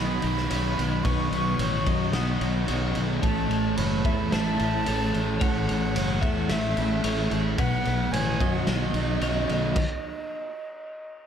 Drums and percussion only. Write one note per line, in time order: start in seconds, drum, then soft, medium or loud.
0.22 ride medium
0.37 snare soft
0.51 ride medium
0.79 ride medium
1.05 kick loud
1.05 ride medium
1.33 ride medium
1.59 ride loud
1.86 kick medium
1.86 ride medium
2.13 snare loud
2.13 ride medium
2.41 ride medium
2.68 ride medium
2.95 ride medium
3.23 kick loud
3.23 ride medium
3.51 ride medium
3.77 ride medium
4.05 kick medium
4.05 ride medium
4.32 snare loud
4.32 ride medium
4.59 ride medium
4.86 ride medium
5.14 ride medium
5.41 kick loud
5.41 ride medium
5.69 ride medium
5.96 ride medium
6.23 kick medium
6.23 ride medium
6.49 snare loud
6.49 ride loud
6.77 ride medium
7.04 ride loud
7.31 ride medium
7.58 kick loud
7.58 ride medium
7.85 ride medium
8.13 ride medium
8.41 kick medium
8.41 ride medium
8.67 snare loud
8.67 ride medium
8.94 ride medium
9.21 ride medium
9.49 ride medium
9.76 kick loud
9.76 crash loud